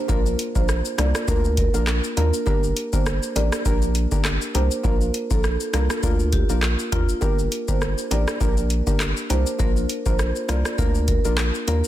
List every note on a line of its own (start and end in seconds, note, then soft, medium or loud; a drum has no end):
0.00 downlifter medium
0.08 0.35 A#1 loud
0.08 0.29 A#3 loud
0.08 0.29 D4 medium
0.08 0.30 F4 medium
0.08 0.19 A#4 loud
0.08 0.30 A#4 loud
0.08 kick loud
0.08 high bongo medium
0.08 shaker medium
0.26 shaker medium
0.39 closed hi-hat medium
0.39 shaker soft
0.55 0.82 A#1 medium
0.55 0.95 A#3 medium
0.55 0.95 D4 medium
0.55 0.95 F4 medium
0.55 0.95 A#4 medium
0.55 0.63 C5 medium
0.55 kick medium
0.55 shaker medium
0.69 cross-stick medium
0.69 shaker medium
0.85 shaker medium
0.98 1.13 C2 loud
0.98 1.26 A#3 medium
0.98 1.26 D4 medium
0.98 1.26 F4 medium
0.98 1.26 A#4 medium
0.98 1.08 D5 medium
0.98 cross-stick medium
0.98 closed hi-hat medium
0.98 high bongo medium
0.98 low bongo medium
0.98 shaker medium
1.15 cross-stick loud
1.15 shaker medium
1.28 1.69 D2 loud
1.28 1.70 A#3 loud
1.28 1.70 D4 medium
1.28 1.70 F4 medium
1.28 1.38 A#4 medium
1.28 1.70 A#4 loud
1.28 kick loud
1.28 high bongo medium
1.28 shaker medium
1.45 shaker medium
1.57 1.68 A#4 medium
1.57 kick medium
1.57 closed hi-hat medium
1.57 shaker soft
1.74 2.01 A#1 medium
1.74 2.14 A#3 medium
1.74 2.14 D4 medium
1.74 2.14 F4 medium
1.74 2.14 A#4 medium
1.74 high bongo medium
1.74 shaker medium
1.87 cross-stick loud
1.87 clap loud
1.87 shaker medium
2.04 shaker medium
2.17 2.32 D#2 loud
2.17 2.44 A#3 medium
2.17 2.45 D4 medium
2.17 2.45 F4 medium
2.17 2.27 A#4 medium
2.17 2.45 A#4 medium
2.17 closed hi-hat medium
2.17 low bongo medium
2.17 shaker soft
2.34 shaker medium
2.46 2.73 G1 loud
2.46 2.67 A#3 loud
2.46 2.67 D4 medium
2.46 2.67 G4 medium
2.46 2.57 A#4 loud
2.46 2.67 A#4 loud
2.46 kick loud
2.46 high bongo medium
2.46 shaker medium
2.64 shaker medium
2.77 closed hi-hat medium
2.77 shaker soft
2.93 3.19 G1 loud
2.93 3.33 A#3 medium
2.93 3.33 D4 medium
2.93 3.33 G4 medium
2.93 3.33 A#4 medium
2.93 3.01 C5 medium
2.93 kick loud
2.93 shaker medium
3.06 cross-stick loud
3.06 shaker medium
3.23 shaker medium
3.36 3.51 A1 loud
3.36 3.63 A#3 medium
3.36 3.63 D4 medium
3.36 3.64 G4 medium
3.36 3.64 A#4 medium
3.36 3.46 D5 medium
3.36 closed hi-hat medium
3.36 high bongo medium
3.36 low bongo medium
3.36 shaker medium
3.52 cross-stick loud
3.52 shaker medium
3.65 4.07 A#1 loud
3.65 4.08 A#3 loud
3.65 4.08 D4 medium
3.65 4.08 G4 medium
3.65 4.09 A#4 medium
3.65 4.08 A#4 loud
3.65 kick loud
3.65 high bongo medium
3.65 shaker medium
3.82 shaker medium
3.95 closed hi-hat medium
3.95 shaker soft
4.12 4.38 G1 medium
4.12 4.51 A#3 medium
4.12 4.51 D4 medium
4.12 4.52 G4 medium
4.12 4.52 A#4 medium
4.12 kick loud
4.12 high bongo medium
4.12 shaker medium
4.25 cross-stick loud
4.25 clap medium
4.25 shaker medium
4.41 shaker medium
4.54 4.69 C2 medium
4.54 4.82 A#3 medium
4.54 4.82 D4 medium
4.54 4.82 G4 medium
4.54 4.82 A#4 medium
4.54 4.65 C5 medium
4.54 closed hi-hat medium
4.54 low bongo medium
4.54 shaker soft
4.71 shaker medium
4.83 5.11 A#1 loud
4.83 5.05 A#3 loud
4.83 5.05 D4 medium
4.83 5.05 F4 medium
4.83 4.95 A#4 loud
4.83 5.05 A#4 loud
4.83 kick loud
4.83 high bongo medium
4.83 shaker medium
5.01 shaker medium
5.14 closed hi-hat medium
5.14 shaker soft
5.30 5.57 A#1 medium
5.30 5.70 A#3 medium
5.30 5.70 D4 medium
5.30 5.70 F4 medium
5.30 5.39 A4 medium
5.30 5.70 A#4 medium
5.30 kick loud
5.30 shaker medium
5.44 cross-stick medium
5.44 shaker medium
5.60 shaker medium
5.73 5.88 C2 medium
5.73 6.01 A#3 medium
5.73 6.01 D4 medium
5.73 6.01 F4 medium
5.73 5.84 A#4 medium
5.73 6.01 A#4 medium
5.73 cross-stick medium
5.73 closed hi-hat medium
5.73 high bongo medium
5.73 low bongo medium
5.73 shaker medium
5.90 cross-stick loud
5.90 shaker medium
6.03 6.44 D2 loud
6.03 6.45 A#3 loud
6.03 6.45 D4 medium
6.03 6.13 F4 medium
6.03 6.46 F4 medium
6.03 6.46 A#4 loud
6.03 kick loud
6.03 high bongo medium
6.03 shaker medium
6.20 shaker medium
6.33 6.43 G4 medium
6.33 kick medium
6.33 closed hi-hat medium
6.33 shaker soft
6.49 6.76 A#1 medium
6.49 6.89 A#3 medium
6.49 6.89 D4 medium
6.49 6.89 F4 medium
6.49 6.89 A#4 medium
6.49 high bongo medium
6.49 shaker medium
6.62 cross-stick medium
6.62 clap medium
6.62 shaker medium
6.79 shaker medium
6.92 7.07 D#2 medium
6.92 7.20 A#3 medium
6.92 7.20 D4 medium
6.92 7.02 F4 medium
6.92 7.20 F4 medium
6.92 7.20 A#4 medium
6.92 kick medium
6.92 closed hi-hat medium
6.92 low bongo medium
6.92 shaker medium
7.09 shaker medium
7.21 7.48 G1 loud
7.21 7.42 A#3 medium
7.21 7.42 D4 medium
7.21 7.42 G4 medium
7.21 7.32 A#4 loud
7.21 7.43 A#4 loud
7.21 kick loud
7.21 high bongo medium
7.21 shaker medium
7.39 shaker medium
7.52 closed hi-hat medium
7.52 shaker soft
7.68 7.95 G1 medium
7.68 8.08 A#3 medium
7.68 8.08 D4 medium
7.68 8.08 G4 medium
7.68 8.08 A#4 medium
7.68 7.76 C5 medium
7.68 kick loud
7.68 shaker medium
7.81 cross-stick medium
7.81 shaker medium
7.98 shaker medium
8.11 8.26 A1 loud
8.11 8.39 A#3 medium
8.11 8.39 D4 medium
8.11 8.39 G4 medium
8.11 8.39 A#4 medium
8.11 8.21 D5 medium
8.11 closed hi-hat medium
8.11 high bongo medium
8.11 low bongo medium
8.11 shaker medium
8.28 cross-stick loud
8.28 shaker medium
8.40 8.82 A#1 medium
8.40 8.83 A#3 loud
8.40 8.83 D4 medium
8.40 8.83 G4 medium
8.40 8.84 A#4 medium
8.40 8.83 A#4 loud
8.40 kick loud
8.40 high bongo medium
8.40 shaker medium
8.57 shaker medium
8.70 closed hi-hat medium
8.70 shaker soft
8.87 9.13 G1 medium
8.87 9.27 A#3 medium
8.87 9.27 D4 medium
8.87 9.27 G4 medium
8.87 9.27 A#4 medium
8.87 kick loud
8.87 high bongo medium
8.87 shaker medium
9.00 cross-stick loud
9.00 clap loud
9.00 shaker medium
9.17 shaker soft
9.30 9.45 C2 medium
9.30 9.57 A#3 medium
9.30 9.58 D4 medium
9.30 9.58 G4 medium
9.30 9.58 A#4 medium
9.30 9.40 C5 medium
9.30 closed hi-hat medium
9.30 low bongo medium
9.30 shaker medium
9.47 shaker medium
9.59 9.86 A#1 loud
9.59 9.80 A#3 loud
9.59 9.80 D4 medium
9.59 9.80 F4 medium
9.59 9.70 A#4 loud
9.59 9.80 A#4 loud
9.59 kick loud
9.59 high bongo medium
9.59 shaker medium
9.76 shaker medium
9.89 closed hi-hat medium
9.89 shaker soft
10.06 10.32 A#1 medium
10.06 10.46 A#3 medium
10.06 10.46 D4 medium
10.06 10.46 F4 medium
10.06 10.46 A#4 medium
10.06 10.14 C5 medium
10.06 kick loud
10.06 shaker medium
10.19 cross-stick loud
10.19 shaker medium
10.36 shaker medium
10.48 10.63 C2 loud
10.48 10.76 A#3 medium
10.48 10.76 D4 medium
10.48 10.76 F4 medium
10.48 10.76 A#4 medium
10.48 10.59 D5 medium
10.48 cross-stick medium
10.48 closed hi-hat medium
10.48 high bongo medium
10.48 low bongo medium
10.48 shaker medium
10.65 cross-stick medium
10.65 shaker medium
10.78 11.19 D2 loud
10.78 11.21 A#3 loud
10.78 11.21 D4 medium
10.78 11.21 F4 medium
10.78 10.89 A#4 medium
10.78 11.21 A#4 loud
10.78 kick loud
10.78 high bongo medium
10.78 shaker medium
10.95 shaker medium
11.08 11.18 A#4 medium
11.08 kick medium
11.08 closed hi-hat medium
11.08 shaker soft
11.25 11.51 A#1 medium
11.25 11.64 A#3 medium
11.25 11.64 D4 medium
11.25 11.64 F4 medium
11.25 11.65 A#4 medium
11.25 high bongo medium
11.25 shaker medium
11.38 cross-stick medium
11.38 clap loud
11.38 shaker medium
11.54 shaker medium
11.67 11.82 D#2 medium
11.67 11.88 A#3 medium
11.67 11.88 D4 medium
11.67 11.88 F4 medium
11.67 11.78 A#4 medium
11.67 11.88 A#4 medium
11.67 closed hi-hat medium
11.67 low bongo medium
11.67 shaker medium
11.84 shaker medium